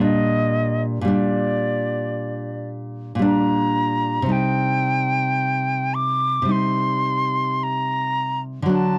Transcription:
Already playing: A#2 G3
0.01 D4 D#5
1.01 A#2 G3
1.08 D4 D5
3.15 A#2
3.19 G3 D4
3.26 A#5
4.22 C3 G3
4.29 D#4 G5
5.94 D6
6.42 C3 G3
6.49 D#4 C6
7.63 A#5
8.62 D3 F#3
8.69 D4 A5

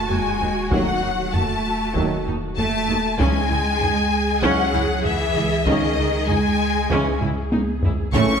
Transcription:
Already playing: D#1 F#4, impact
0.09 D#2 F#3 G#3 G#5, taiko low
0.40 D#2 D#4
0.71 D#2 D#3 F#3 A3 D#4 F#5, taiko
1.01 D#2 D#4
1.33 D#2 A3 A5, taiko low
1.95 D#2 D#3 F#3 A3 D#4, taiko
2.26 D#2 D#4, taiko low
2.57 D#2 A3 A5, taiko low
2.88 D#2 D#4
3.18 C#2 C#3 E3 G#3 C#4 D#4 G#4 G#5, taiko
3.50 C#2 E4
3.81 C#2 D#4, taiko low
4.42 C#2 C#3 E3 F#3 G#3 C#4 D#4 F#5, taiko
4.74 C#2 E4, taiko low
5.04 C#2 E3 E4 E5, taiko low
5.36 C#2 E4
5.65 C#2 C#3 D#3 G#3 C#4 D#4 D#5, taiko
5.98 C#2 D#4
6.27 C#2 G#3 D#4 G#5, taiko low
6.90 C#2 C#3 E3 G#3 C#4 D#4, taiko
7.21 C#2 E4, taiko low-mid
7.52 C#2 D#4, taiko high
7.83 C#2 E4, taiko low
8.13 A1 C#3 E3 A3 C#4 A4 C#6, taiko

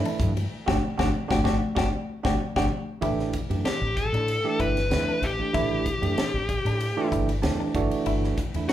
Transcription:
Already playing: E3 A3 D4 E4
0.05 D4, ride
0.20 G2, kick, hi-hat pedal, low conga
0.37 ride, high conga
0.66 G1 D4 F#4 G4, kick, snare, high conga
0.98 G1 D4 F#4 G4, kick, snare, high conga
1.28 G1 D4 F#4 G4, kick, snare, high conga
1.44 G1 D4 F#4 G4, kick, snare, high conga
1.75 G1 D4 F#4 G4, kick, snare, high conga
2.23 G1 D4 F#4 G4, kick, snare, high conga
2.56 G1 D4 F#4 G4, kick, snare, high conga
3.01 A1 E3 A3 D4 E4 G4, kick, ride
3.19 snare
3.33 kick, hi-hat pedal, ride
3.50 F#2 E3 A3 D4 G4, ride
3.65 D4 G4, muted fretless electric bass stroke, snare, ride
3.81 A1 D4 G4
3.96 A4, kick, hi-hat pedal, ride
4.13 A2 D4, ride
4.28 ride
4.44 E3 A3 D4 G4
4.60 G1 E4 B4, kick, hi-hat pedal, ride
4.77 snare, ride
4.90 E2 E3 A3 D4 E4, snare, ride
5.09 D4
5.22 A1 G4, hi-hat pedal, ride
5.39 E3 A3 D4 G4
5.53 A1 E3 A3 D4 E4, kick, ride
5.86 kick, hi-hat pedal, ride
6.02 F#2 E3 A3 D4 G4, ride
6.17 D4, muted fretless electric bass stroke, snare, ride
6.34 A1 D4 G4
6.49 kick, hi-hat pedal, ride
6.65 A2 D4, ride
6.80 ride
6.97 E3 A3 D4 G4
7.12 G1 E4, kick, hi-hat pedal, ride
7.29 ride
7.42 E2 E3 A3 D4 G4 A5, snare, ride
7.60 D4
7.75 G1 E3 A3 D4 F#4 D5, kick, hi-hat pedal, ride
7.91 ride
8.06 G1 E4, ride
8.24 snare
8.38 kick, hi-hat pedal, ride
8.54 E2 E3 A3 D4 E4, ride
8.69 D4 F#4, muted fretless electric bass stroke, snare, ride

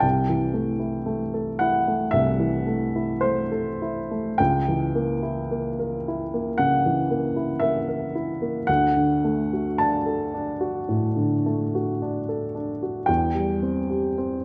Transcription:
0.00 C2 G5
0.29 E3
0.54 A3
0.80 E4
1.06 A3
1.34 A4
1.59 E4 F#5
1.88 A3
2.11 C2 E5
2.40 E3
2.67 A3
2.96 E4
3.21 A3 C5
3.52 A4
3.82 E4
4.11 A3
4.38 C#2 G5
4.68 E3
4.95 A#3
5.23 E4
5.51 A#3
5.79 A#4
6.08 E4
6.34 A#3
6.58 C#3 F#5
6.86 E3
7.10 A#3
7.36 E4
7.60 A#3 E5
7.88 A#4
8.15 E4
8.42 A#3
8.67 D2 F#5
8.97 D3
9.24 A3
9.53 F#4
9.78 D4 A5
10.06 A4
10.34 D4
10.61 F#4
10.89 A2
11.16 D3
11.46 A3
11.75 F#4
12.02 D4
12.29 A4
12.55 D4
12.83 F#4
13.06 E2 G5
13.34 G3
13.62 C4
13.90 G4
14.18 C4

